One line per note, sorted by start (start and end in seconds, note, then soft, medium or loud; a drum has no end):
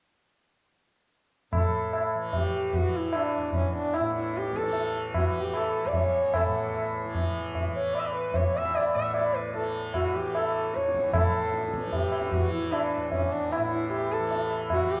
1.51 3.99 A2 soft
1.51 2.09 A4 medium
1.51 tabla na medium
1.51 tabla ge medium
1.93 tabla na medium
2.15 2.76 E3 soft
2.33 2.77 G4 medium
2.33 tabla tin medium
2.33 tabla ge medium
2.73 4.60 E3 soft
2.73 2.98 F#4 medium
2.73 tabla tin medium
2.73 tabla ge medium
2.96 3.17 E4 medium
3.13 3.54 D4 medium
3.13 tabla na medium
3.37 5.84 E2 medium
3.53 tabla tin medium
3.53 tabla ge medium
3.57 3.74 C#4 medium
3.76 3.97 D4 medium
3.94 4.14 E4 medium
3.94 tabla na medium
4.00 6.45 A2 medium
4.17 4.39 E4 medium
4.34 4.58 G4 medium
4.34 tabla te medium
4.44 tabla te medium
4.53 4.95 A4 medium
4.53 tabla ke medium
4.60 5.22 E3 medium
4.60 tabla te medium
4.73 tabla tin medium
5.14 5.38 F#4 medium
5.14 tabla na medium
5.14 tabla ge medium
5.22 7.05 E3 soft
5.36 5.58 G4 medium
5.54 5.88 A4 medium
5.54 tabla na medium
5.85 8.31 E2 medium
5.85 5.97 D5 medium
5.93 6.37 C#5 medium
5.93 tabla tin medium
5.93 tabla ge medium
6.34 6.95 A4 medium
6.34 tabla na medium
6.34 tabla ge medium
6.46 8.94 A2 medium
6.74 tabla na medium
7.05 7.68 E3 medium
7.15 tabla tin medium
7.15 tabla ge medium
7.55 tabla tin medium
7.55 tabla ge medium
7.68 9.55 E3 medium
7.75 7.95 C#5 medium
7.94 8.01 D5 medium
7.94 tabla na medium
7.99 8.08 E5 medium
8.06 8.14 D5 medium
8.15 8.37 B4 medium
8.31 10.75 E2 medium
8.31 tabla tin medium
8.31 tabla ge medium
8.35 8.58 C#5 medium
8.54 8.78 E5 medium
8.54 tabla na medium
8.66 tabla ke medium
8.75 8.97 D5 medium
8.75 tabla na medium
8.94 11.11 A2 medium
8.94 9.15 E5 medium
9.14 9.36 D5 medium
9.14 tabla na medium
9.35 9.54 B4 medium
9.54 10.15 E3 medium
9.54 9.74 A4 medium
9.54 tabla tin medium
9.94 10.17 F#4 medium
9.94 tabla na medium
9.94 tabla ge medium
10.15 11.74 E3 soft
10.15 10.38 G4 medium
10.35 10.77 A4 medium
10.35 tabla na medium
10.74 12.96 E2 medium
10.74 11.14 C#5 medium
10.74 tabla te medium
10.84 tabla te medium
10.94 tabla ke soft
11.05 tabla te medium
11.12 13.57 A2 medium
11.12 11.70 A4 medium
11.12 tabla na medium
11.12 tabla ge medium
11.54 tabla te medium
11.64 tabla te medium
11.74 12.37 E3 medium
11.74 tabla ke medium
11.83 tabla te medium
11.93 12.35 G4 medium
11.93 tabla tin medium
11.93 tabla ge medium
12.12 tabla na medium
12.22 tabla ke medium
12.31 12.52 F#4 medium
12.31 tabla tin medium
12.31 tabla ge medium
12.37 14.20 E3 soft
12.52 12.75 E4 medium
12.72 13.13 D4 medium
12.72 tabla na medium
12.97 15.00 E2 medium
13.12 13.34 C#4 medium
13.12 tabla tin medium
13.12 tabla ge medium
13.33 13.53 D4 medium
13.52 13.71 E4 medium
13.52 tabla na medium
13.58 15.00 A2 medium
13.71 13.90 E4 medium
13.91 14.14 G4 medium
13.91 tabla na medium
14.12 14.52 A4 medium
14.20 14.78 E3 medium
14.31 tabla tin medium
14.51 tabla na medium
14.70 14.93 F#4 medium
14.70 tabla na medium
14.70 tabla ge medium
14.78 15.00 E3 medium
14.92 15.00 G4 medium